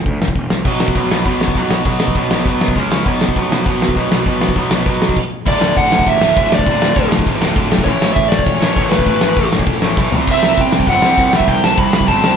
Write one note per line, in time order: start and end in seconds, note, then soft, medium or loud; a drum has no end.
0.06 0.18 D2 medium
0.06 kick loud
0.06 open hi-hat medium
0.21 0.33 D1 loud
0.21 snare loud
0.28 kick medium
0.35 0.48 E1 medium
0.35 kick medium
0.35 open hi-hat medium
0.50 0.63 C2 loud
0.50 snare loud
0.65 0.89 B1 medium
0.65 0.95 B2 medium
0.65 0.96 F#3 medium
0.65 0.96 B3 loud
0.65 kick loud
0.65 crash medium
0.80 snare loud
0.88 kick medium
0.95 1.07 B1 medium
0.95 1.11 B2 medium
0.95 1.10 F#3 medium
0.95 1.09 B3 medium
0.95 kick medium
0.95 open hi-hat soft
1.10 1.23 B1 medium
1.10 1.24 B2 medium
1.10 1.24 F#3 medium
1.10 1.25 B3 medium
1.10 snare loud
1.25 1.50 B1 medium
1.25 1.54 B2 medium
1.25 1.54 F#3 medium
1.25 1.55 B3 loud
1.25 kick loud
1.25 open hi-hat medium
1.41 snare medium
1.48 kick medium
1.55 1.68 B1 medium
1.55 1.70 B2 medium
1.55 1.69 F#3 medium
1.55 1.68 B3 medium
1.55 kick medium
1.55 open hi-hat medium
1.70 1.83 B1 medium
1.70 1.84 B2 medium
1.70 1.85 F#3 medium
1.70 1.85 B3 medium
1.70 snare loud
1.85 2.09 B1 medium
1.85 2.14 B2 medium
1.85 2.15 F#3 loud
1.85 2.15 B3 loud
1.85 kick loud
1.85 open hi-hat medium
2.00 snare loud
2.08 kick medium
2.15 2.27 B1 medium
2.15 2.30 B2 medium
2.15 2.30 F#3 medium
2.15 2.29 B3 medium
2.15 kick medium
2.15 open hi-hat medium
2.30 2.43 B1 medium
2.30 2.44 B2 medium
2.30 2.45 F#3 medium
2.30 2.46 B3 loud
2.30 snare loud
2.45 2.58 B1 medium
2.45 2.75 B2 medium
2.45 2.75 F#3 medium
2.45 2.75 B3 loud
2.45 kick loud
2.45 open hi-hat medium
2.61 2.73 B1 medium
2.61 snare loud
2.68 kick loud
2.75 2.87 C#2 medium
2.75 2.89 C#3 medium
2.75 2.90 G#3 medium
2.75 2.90 C#4 medium
2.75 kick medium
2.75 open hi-hat medium
2.90 3.02 C#2 medium
2.90 3.05 C#3 medium
2.90 3.05 G#3 loud
2.90 3.05 C#4 medium
2.90 snare loud
3.05 3.30 B1 medium
3.05 3.35 B2 medium
3.05 3.36 F#3 loud
3.05 3.37 B3 loud
3.05 kick loud
3.05 open hi-hat soft
3.21 snare loud
3.29 kick medium
3.36 3.48 B1 medium
3.36 3.51 B2 medium
3.36 3.51 F#3 medium
3.36 3.50 B3 medium
3.36 kick medium
3.36 open hi-hat medium
3.51 3.63 B1 medium
3.51 3.65 B2 medium
3.51 3.65 F#3 medium
3.51 3.67 B3 medium
3.51 snare loud
3.66 3.90 B1 medium
3.66 3.94 B2 medium
3.66 3.96 F#3 medium
3.66 3.96 B3 loud
3.66 kick loud
3.66 open hi-hat medium
3.82 snare loud
3.89 kick medium
3.95 4.08 B1 medium
3.95 4.11 B2 medium
3.95 4.11 F#3 loud
3.95 4.10 B3 loud
3.95 kick medium
3.95 open hi-hat medium
4.11 4.23 B1 medium
4.11 4.23 B2 medium
4.11 4.25 F#3 medium
4.11 4.25 B3 medium
4.11 snare loud
4.25 4.50 B1 medium
4.25 4.55 B2 loud
4.25 4.56 F#3 medium
4.25 4.56 B3 loud
4.25 kick medium
4.25 open hi-hat medium
4.41 snare loud
4.49 kick medium
4.56 4.68 B1 medium
4.56 4.72 B2 medium
4.56 4.71 F#3 medium
4.56 4.70 B3 loud
4.56 kick medium
4.56 open hi-hat medium
4.71 4.83 B1 medium
4.71 4.85 B2 medium
4.71 4.86 F#3 medium
4.71 4.87 B3 medium
4.71 snare loud
4.86 4.98 B1 medium
4.86 5.15 B2 medium
4.86 5.16 F#3 medium
4.86 5.16 B3 loud
4.86 kick loud
4.86 open hi-hat medium
5.02 5.14 B1 medium
5.02 snare loud
5.09 kick medium
5.16 kick medium
5.16 crash medium
5.45 5.56 D1 loud
5.45 6.20 D2 medium
5.45 6.21 A2 medium
5.45 6.19 D3 loud
5.45 5.78 D5 medium
5.45 kick loud
5.45 crash loud
5.61 5.71 D1 medium
5.61 snare loud
5.77 5.87 D1 medium
5.77 6.08 F#5 loud
5.77 kick loud
5.77 ride medium
5.91 6.01 D1 medium
5.91 snare loud
5.99 kick medium
6.07 6.16 A1 loud
6.07 6.53 E5 medium
6.07 kick medium
6.07 ride medium
6.21 6.31 D1 medium
6.21 6.33 D2 medium
6.21 6.36 A2 medium
6.21 6.35 D3 medium
6.21 snare loud
6.35 6.46 D1 medium
6.35 6.64 D2 medium
6.35 6.66 A2 medium
6.35 kick loud
6.35 ride medium
6.39 6.67 D3 medium
6.51 6.61 D1 loud
6.51 7.09 D5 medium
6.51 snare loud
6.59 kick medium
6.66 6.76 D1 medium
6.66 7.40 D2 medium
6.66 7.41 A2 loud
6.66 7.38 D3 medium
6.66 kick loud
6.66 ride medium
6.80 6.90 D1 loud
6.80 snare loud
6.96 7.06 D1 medium
6.96 kick loud
6.96 ride medium
7.10 7.20 D1 medium
7.10 snare loud
7.19 kick medium
7.26 7.36 A1 medium
7.26 kick loud
7.26 ride medium
7.40 7.51 D1 medium
7.40 7.55 A2 medium
7.40 7.55 D3 medium
7.40 snare loud
7.44 7.53 D2 medium
7.55 7.66 D1 medium
7.55 7.84 D2 medium
7.55 7.84 A2 medium
7.55 kick loud
7.55 ride medium
7.59 7.87 D3 medium
7.71 7.81 B1 loud
7.71 snare loud
7.78 kick medium
7.84 7.96 A1 loud
7.84 8.60 A2 medium
7.84 8.62 E3 loud
7.84 8.13 C#5 loud
7.84 kick loud
7.84 ride medium
7.89 8.59 A3 loud
8.01 8.11 A1 medium
8.01 snare loud
8.14 8.26 A1 loud
8.14 8.28 E5 loud
8.14 kick loud
8.14 ride medium
8.28 8.41 A1 loud
8.28 8.44 D5 loud
8.28 snare loud
8.39 kick medium
8.44 8.56 E1 loud
8.44 8.92 C#5 medium
8.44 kick loud
8.44 ride medium
8.60 8.72 A1 loud
8.60 8.74 A2 medium
8.60 8.77 E3 medium
8.60 8.75 A3 medium
8.60 snare loud
8.75 8.86 A1 medium
8.75 9.04 A2 medium
8.75 9.07 E3 medium
8.75 9.07 A3 medium
8.75 kick loud
8.75 ride medium
8.89 9.03 A1 medium
8.89 9.47 B4 medium
8.89 snare loud
8.99 kick medium
9.06 9.17 A1 medium
9.06 9.81 A2 medium
9.06 9.83 E3 medium
9.06 9.80 A3 loud
9.06 kick medium
9.06 ride medium
9.21 9.32 A1 medium
9.21 snare loud
9.36 9.47 A1 medium
9.36 kick loud
9.36 ride medium
9.53 9.63 A1 medium
9.53 snare loud
9.59 kick medium
9.66 9.77 E1 medium
9.66 kick loud
9.66 ride medium
9.81 9.93 A1 medium
9.81 9.96 A2 medium
9.81 9.98 E3 medium
9.81 9.96 A3 medium
9.81 snare loud
9.97 10.07 B1 medium
9.97 10.11 A2 medium
9.97 10.13 E3 medium
9.97 10.13 A3 medium
9.97 kick loud
9.97 snare medium
10.11 10.22 C2 medium
10.11 10.87 C3 medium
10.11 10.88 G3 medium
10.11 floor tom loud
10.15 10.89 C4 loud
10.27 10.38 C2 medium
10.27 kick loud
10.27 ride medium
10.27 crash medium
10.31 10.58 E5 loud
10.43 10.53 C2 medium
10.43 snare loud
10.57 10.68 C2 medium
10.57 10.89 G5 loud
10.57 kick loud
10.57 ride medium
10.72 10.83 C2 loud
10.72 snare loud
10.80 kick medium
10.86 10.98 G1 medium
10.86 11.02 C3 medium
10.86 11.03 G3 medium
10.86 11.35 F#5 medium
10.86 kick loud
10.86 ride medium
10.91 11.01 C4 medium
11.02 11.13 C2 loud
11.02 11.30 C3 medium
11.02 11.32 G3 medium
11.02 11.32 C4 medium
11.02 snare loud
11.17 11.28 C2 medium
11.17 kick loud
11.17 ride medium
11.31 11.44 C2 loud
11.31 12.05 C3 medium
11.31 12.08 G3 loud
11.31 12.09 C4 medium
11.31 snare loud
11.37 11.48 E5 medium
11.37 kick medium
11.48 11.58 C2 loud
11.48 11.64 G5 loud
11.48 kick medium
11.48 ride medium
11.64 11.74 C2 loud
11.64 11.78 A5 medium
11.64 snare loud
11.77 11.88 C2 loud
11.77 11.93 B5 loud
11.77 kick loud
11.77 ride medium
11.93 12.03 C2 medium
11.93 12.08 B5 loud
11.93 snare loud
12.01 kick medium
12.07 12.19 G1 medium
12.07 12.22 C3 medium
12.07 12.23 G3 medium
12.07 12.21 C4 medium
12.07 12.37 A5 loud
12.07 kick medium
12.07 ride medium
12.22 12.34 C2 loud
12.22 12.37 G3 medium
12.22 12.37 C4 medium
12.22 snare loud
12.26 12.37 C3 medium